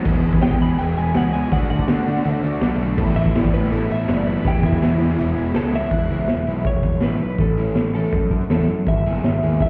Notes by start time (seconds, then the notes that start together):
0.05 E1 E2 B2 E3 G#3 B3 G#4, kick, closed hi-hat, crash
0.24 E1, closed hi-hat
0.33 kick
0.42 E2 B2 E3 G#3 B3 G#4 G5, snare, closed hi-hat
0.51 kick
0.60 E2 B2 E3 G#3 B3 G#4 B5, closed hi-hat
0.78 E1 E2 B2 E3 G#3 B3 G#4 G5, closed hi-hat
0.88 closed hi-hat
0.97 E1 G#5, closed hi-hat
1.05 closed hi-hat
1.14 C#2 E2 B2 E3 G#3 B3 G#4 F#5, snare, closed hi-hat
1.33 E2 B2 E3 G#3 B3 G#4 G#5, closed hi-hat
1.43 closed hi-hat
1.52 D2 D3 A3 D4 F#4 F#5, kick, closed hi-hat
1.70 D2 F#5, kick, closed hi-hat
1.79 kick, closed hi-hat
1.88 D3 A3 D4 F#4, snare, closed hi-hat
2.06 D3 A3 D4 F#4, closed hi-hat
2.16 snare
2.25 D2 D3 A3 D4 F#4, closed hi-hat
2.34 closed hi-hat
2.43 D2, closed hi-hat
2.52 closed hi-hat
2.61 B1 D3 A3 D4 F#4, snare, closed hi-hat
2.71 closed hi-hat
2.80 D3 A3 D4 F#4, closed hi-hat
2.98 A1 A2 E3 A3 B3 E4, kick, crash
3.16 A1 E5, closed hi-hat
3.26 kick
3.35 A2 E3 A3 B3 E4 D5, snare, closed hi-hat
3.44 kick
3.54 A2 E3 A3 B3 E4 B4, closed hi-hat
3.62 snare
3.71 A1 A2 E3 A3 B3 E4 A4, closed hi-hat
3.82 closed hi-hat
3.90 A1 E5, closed hi-hat
3.99 closed hi-hat
4.08 F#1 A2 E3 A3 B3 E4 D5, snare, closed hi-hat
4.26 A2 E3 A3 B3 E4 B4, closed hi-hat
4.36 closed hi-hat
4.44 E1 E2 B2 E3 G#3 B3 E4 G4, kick, closed hi-hat
4.63 E1 E4, kick, closed hi-hat
4.73 kick, closed hi-hat
4.82 E2 B2 E3 G#3 B3 E4, snare, closed hi-hat
5.00 E2 B2 E3 G#3 B3 E4, closed hi-hat
5.10 snare, closed hi-hat
5.18 E1 E2 B2 E3 G#3 B3 E4, closed hi-hat
5.28 closed hi-hat
5.37 E1, closed hi-hat
5.46 closed hi-hat
5.54 C#2 E2 B2 E3 G#3 B3 E4 A4, snare, closed hi-hat
5.73 E2 B2 E3 G#3 B3 E4 E5, snare
5.91 E1, muted overdriven electric guitar stroke, kick, crash
6.10 C#2 E3 G#3 B3 E4, closed hi-hat
6.19 closed hi-hat
6.28 E1, muted overdriven electric guitar stroke, snare, closed hi-hat
6.46 B1 E3 G#3 B3 E4, closed hi-hat
6.65 E1 C#5, muted overdriven electric guitar stroke, kick, closed hi-hat
6.83 muted overdriven electric guitar stroke, kick, closed hi-hat
6.92 closed hi-hat
7.00 A1 E3 G#3 B3 E4 B4, snare, closed hi-hat
7.20 B1 B4, muted overdriven electric guitar stroke, closed hi-hat
7.29 closed hi-hat
7.38 A1 A4, muted overdriven electric guitar stroke, kick, closed hi-hat
7.57 E3 A3 C#4 E4, closed hi-hat
7.75 A1, muted overdriven electric guitar stroke, snare, closed hi-hat
7.94 E3 A3 C#4 E4 A4, closed hi-hat
8.04 closed hi-hat
8.12 F#2, muted overdriven electric guitar stroke, kick, closed hi-hat
8.31 muted overdriven electric guitar stroke, kick, closed hi-hat
8.41 closed hi-hat
8.50 E2 E3 A3 C#4 E4 A4, snare, closed hi-hat
8.68 F#2, muted overdriven electric guitar stroke, closed hi-hat
8.87 G#1 E5, muted overdriven electric guitar stroke, kick, closed hi-hat
9.05 F#1 G#3 B3 E4 G#4, closed hi-hat
9.14 closed hi-hat
9.24 G#1, muted overdriven electric guitar stroke, snare, closed hi-hat
9.42 D#2 G#3 B3 E4 G#4, closed hi-hat
9.60 C#2 D#5, muted overdriven electric guitar stroke, kick, closed hi-hat